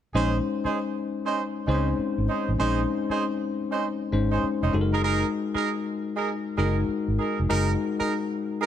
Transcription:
0.14 A#1 G#3 C#4 D#4 G#4 C5
0.64 C#4 D#4 G#4 C5, muted fingered electric bass stroke
1.25 C#4 D#4 G#4 C5
1.67 C#2 G#3 C4 C#4 D#4 G#4 C5
1.74 C#4
1.99 muted fingered electric bass stroke
2.18 G#1
2.29 C#4 D#4 G#4 C5
2.49 A1
2.59 A#1 G#3 C#4 D#4 G#4 C5
3.10 C#4 D#4 G#4 C5, muted fingered electric bass stroke
3.71 C#4 D#4 G#4 C5
4.12 G#1 G#3 C#4 D#4 C5
4.32 C#4 D#4 G#4 C5
4.44 muted fingered electric bass stroke
4.62 F1 C#4 D#4 G#4 C5
4.73 F#1 G#3 D#4 F#4 A4
4.81 A#4
4.93 D#4 G#4 A#4
5.04 D#4 G#4 A#4
5.54 D#4 G#4 A#4, muted fingered electric bass stroke
6.16 D#4 G#4 A#4
6.58 F#1 G#3 D#4 F#4 G#4 A#4
6.88 muted fingered electric bass stroke
7.08 G#1
7.19 D#4 G#4 A#4
7.40 F1
7.49 F#1 G#3 D#4 F#4 G#4 A#4
7.99 D#4 G#4 A#4, muted fingered electric bass stroke
8.61 D#4 G#4 A#4

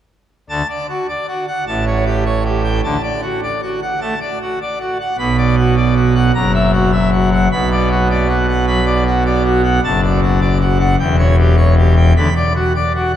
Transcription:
0.50 D2 D3 A5
0.69 D5
0.89 F#4
1.09 D5
1.28 F#4
1.48 F#5
1.67 A1 A2 A5
1.87 C#5
2.06 G4
2.26 C#5
2.45 G4
2.64 G5
2.84 D2 D3 A5
3.03 D5
3.22 F#4
3.43 D5
3.63 F#4
3.82 F#5
4.01 A3 A5
4.21 D5
4.42 F#4
4.62 D5
4.80 F#4
5.00 F#5
5.18 B1 B2 B5
5.38 D5
5.58 F#4
5.77 D5
5.96 F#4
6.15 F#5
6.34 F#1 F#2 A#5
6.54 E5
6.73 F#4
6.92 E5
7.12 F#4
7.32 F#5
7.52 B1 B2 B5
7.72 D5
7.91 F#4
8.11 D5
8.29 F#4
8.48 F#5
8.67 F#3 B5
8.86 D5
9.07 F#4
9.26 D5
9.44 F#4
9.64 F#5
9.84 F#1 F#2 A5
10.03 D5
10.23 F#4
10.41 D5
10.61 F#4
10.79 F#5
10.99 E1 E2 G5
11.19 C#5
11.39 G4
11.57 C#5
11.78 G4
11.97 G5
12.16 D2 D3 B5
12.36 D5
12.55 F#4
12.76 D5
12.95 F#4
13.13 F#5

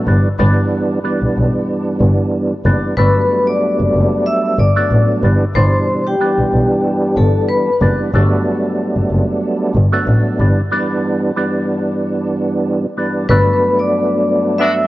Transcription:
0.07 G1 G2 E3 G3 B3 D4
0.38 G1 G2 E3 G3 B3 D4
1.04 G2 E3 G3 B3 D4
1.22 B1
1.37 B1
2.01 G1
2.65 F#1 G2 E3 G3 B3 D4
2.97 G1 F#3 G3 A3 B3 D4 B4 B5
3.47 D5 D6
3.80 F#1
3.94 F#1
4.26 E5 E6
4.59 G1 D5 D6
4.76 G2 F#3 A3 B3 D4
4.91 A1
5.23 G1 G2 E3 G3 B3 D4
5.55 G1 G2 B2 E3 G3 D4 C5 C6
6.07 G4 G5
6.20 G2 E3 G3 B3 D4
6.38 B1
6.53 B1
7.17 G1 A4 A5
7.49 B4 B5
7.81 F#1 G2 E3 G3 B3 D4
8.14 G1 F#3 G3 A3 B3 D4
8.97 F#1
9.11 F#1
9.75 G1
9.92 G2 F#3 A3 B3 D4
10.07 A1
10.39 G1 G2 E3 G3 B3 D4
10.71 G2 E3 G3 B3 D4
11.36 G2 E3 G3 B3 D4
12.97 G2 E3 G3 B3 D4
13.29 G1 G2 F#3 A3 B3 D4 B4 B5
13.79 D5 D6
14.58 B3 D4 F#4 E5 E6

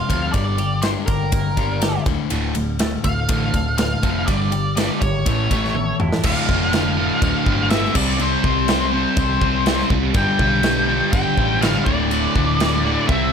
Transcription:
Already playing: G3 F4 F5
0.09 D2 F2 C3 F3 C4, kick, ride
0.32 G1 G2 D3 G3 D5, kick, ride
0.58 G2 D3 G4, ride
0.82 G2 D3 G3 D4 C5, snare, ride
1.06 G1 G2 D3 G4 A#4, kick, ride
1.32 G1 G2 D3 A#3, kick, ride
1.57 G1 G2 D3 G3 D4, kick, ride
1.81 G2 D3 G4, snare, ride
2.06 D1 D2 A2 D3, kick, ride
2.30 D1 D2 A2 D3, ride
2.55 D1 D2 A2, ride
2.79 D2 A2 A3, snare, ride
3.04 D1 D2 A2 F5, kick, ride
3.28 A1 D2 A2 D3, kick, ride
3.54 D1 D2 A2 A3, kick, ride
3.78 D2 A2 F5, snare, ride
4.03 F1 D2 A2 D3 A3, kick, ride
4.27 G1 G2 D3 G3 D5, kick, ride
4.52 G2 D3 G4, ride
4.76 G2 D3 G3 D4 D5, snare, ride
5.01 G#1 G2 D3 G4 C#5, kick, ride
5.26 A1 A2 E3 A3, kick, ride
5.51 A1 A2 E3 A3 E4, kick, ride
5.65 snare
5.75 A2 E3 A4, high tom
6.00 E1 A2 E3 E4, mid tom
6.13 snare
6.23 D1 D2 A2 D3 F5, kick, crash
6.48 F1 D2 A2 D3, kick
6.72 D2 A2 D3 F5, snare, crash
6.97 D2 A2 D3
7.21 D1 D2 A2 D3 F5, kick, crash
7.46 G1 D2 A2 D3, kick
7.70 D2 A2 D3 E5, snare, crash
7.85 snare
7.94 C2 C3 G3 C4 D5, kick, crash
8.19 C3 G3 C4 C5, crash
8.44 C2 C3 G3 C4, kick
8.68 C3 G3 C4, snare, crash
8.93 C3 G3 C4 C5
9.17 C2 C3 G3 C4, kick, crash
9.41 C2 C3 G3 C4, kick
9.66 C3 G3 C4, snare, crash
9.79 snare
9.90 C2 C3 G3 C4, kick
10.14 G1 G2 D3 G3 G5, kick, crash
10.39 B1 G2 D3 G3, kick
10.63 G2 D3 G3, snare, crash
10.88 G2 D3 G3
11.12 G1 G2 D3 G3 G5, kick, crash
11.37 A1 G2 D3 G3, kick
11.62 G2 D3 G3 F5, snare, crash
11.85 D1 D2 A2 D3 D5, kick
12.11 D2 A2 D3, crash
12.35 D1 D2 A2 D3, kick
12.60 D2 A2 D3, snare, crash
12.84 D2 A2 D3
13.08 C2 C3 G3 C4 E5, kick

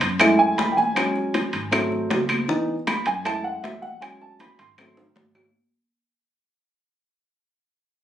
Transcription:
0.01 F#2, high bongo, high conga, high timbale
0.19 G#3 A3 E4, high bongo, high conga, high timbale, claves
0.39 G#5, high bongo, high conga
0.58 E2 B5, high bongo, low bongo, high conga, high timbale
0.72 G5
0.77 G#5, high bongo, high conga
0.95 F#3 G#3 C#4, high bongo, high conga, high timbale, claves
1.15 high bongo, high conga
1.34 high bongo, high conga, high timbale
1.53 G#1, high conga, high timbale
1.71 F#3 A3 C4, high bongo, high conga, high timbale, claves
1.92 high bongo, high conga
2.10 C#2, high bongo, low bongo, high conga, high timbale, low timbale
2.29 high bongo, high conga, high timbale, claves
2.48 E3 B3 D#4, high bongo, high conga
2.68 high conga
2.87 B5, high bongo, high conga, high timbale, claves
3.06 F#2 G#5, high bongo, high conga, high timbale
3.25 G#3 A3 E4 A5, high bongo, high conga, high timbale, claves
3.44 F#5, high bongo, high conga
3.63 E2 E5, high bongo, low bongo, high conga, high timbale, low timbale
3.82 F#5, high bongo, high conga
4.00 F#3 G#3 C#4 G#5, high bongo, high conga, high timbale, claves
4.21 A5, high bongo, high conga
4.40 B5, high bongo, high conga, high timbale
4.59 G#1 C6, high conga, high timbale
4.78 F#3 A3 C4, high bongo, high conga, high timbale, claves
4.97 high bongo, high conga, high timbale
5.16 G#1, high bongo, low bongo, high conga, low timbale
5.35 high bongo, high conga, low timbale, claves

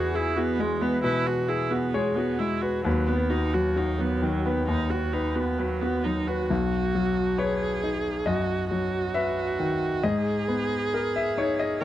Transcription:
Already playing: E2 F#4 G#4 B4 C#5
0.15 E4 G#4
0.36 B3 F#4
0.59 G#3
0.81 B3 B4
1.03 B2 E4 B4
1.26 F#4 B4
1.48 E4 G#4
1.70 B3 F#4
1.94 G#3 G#4 C#5
2.15 B3 F#4
2.39 G#3 E4
2.62 F#4 B4
2.84 D#2 F#3 B4
3.08 B3 B4
3.30 D#4 F#4
3.54 F#3 F#4
3.76 D#4 F#4
3.99 F#3 B3
4.22 D#3 F#3
4.46 B3 B4
4.68 D#2 D#4
4.90 F#4
5.13 D#4 B4
5.35 B3 F#4
5.59 F#3 B4
5.81 B3 F#4
6.04 F#3 D#4
6.28 F#4 B4
6.49 B1 F#4
6.95 F#3
7.38 G#4 B4 C#5
7.83 D#4
8.26 F#2 F#4 D#5
8.71 F#3 F#4
9.14 B4 E5
9.59 D#3
10.03 G#2 G#4 D#5
10.48 B3
10.94 A#4
11.16 E5
11.38 D#4 C#5
11.60 D#5
11.81 A#4

